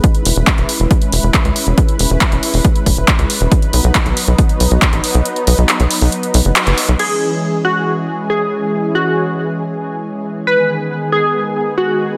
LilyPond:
<<
  \new Staff \with { instrumentName = "Synth pluck" } { \time 4/4 \key cis \minor \tempo 4 = 138 r1 | r1 | r1 | r1 |
gis'4. fis'4. gis'4~ | gis'8 fis'2.~ fis'8 | b'4. gis'4. fis'4 | }
  \new Staff \with { instrumentName = "Analog synth pad" } { \time 4/4 \key cis \minor << { b'1~ | b'1~ | b'1~ | b'1 |
gis'1~ | gis'1 | gis'1 | } \\ { <gis cis' e'>1~ | <gis cis' e'>1 | <fis b dis'>1~ | <fis b dis'>1 |
<e gis cis'>1~ | <e gis cis'>1 | <dis gis b>1 | } >> }
  \new Staff \with { instrumentName = "Analog synth bass" } { \clef bass \time 4/4 \key cis \minor r8 e,,16 e,,16 r16 e,,16 r16 e,,16 r8 e,,16 e,,16 r16 cis,16 r16 e,,16 | r8 e,,16 e,,16 r16 e,,16 r16 e,,16 r8 e,,16 e,,16 r16 cis,16 r16 e,,16 | r8 b,,16 b,,16 r16 b,,16 r16 b,,16 r8 b,,16 b,,16 r16 a,,16 r16 b,,16 | r8 b,,16 b,,16 r16 b,,16 r16 b,,16 r8 b,,16 fis,,16 r16 fis,,16 r16 b,,16 |
r1 | r1 | r1 | }
  \new DrumStaff \with { instrumentName = "Drums" } \drummode { \time 4/4 <hh bd>16 hh16 hho16 hh16 <hc hh bd>16 hh16 hho16 hh16 <hh bd>16 hh16 hho16 hh16 <hc hh bd>16 hh16 hho16 hh16 | <hh bd>16 hh16 hho16 hh16 <hc hh bd>16 hh16 hho16 hho16 <hh bd>16 hh16 <hho bd>16 hh16 <hc hh bd>16 hh16 hho16 hh16 | <hh bd>16 hh16 hho16 hh16 <hc hh bd>16 hh16 hho16 hh16 <hh bd>16 hh16 hho16 hh16 <hc hh bd>16 hh16 hho16 hh16 | hh16 hh16 hho16 hh16 <hc hh>16 hh16 hho16 hho16 hh16 hh16 hho16 hh16 <hc hh>16 hh16 hho16 hh16 |
cymc4 r4 r4 r4 | r4 r4 r4 r4 | r4 r4 r4 r4 | }
>>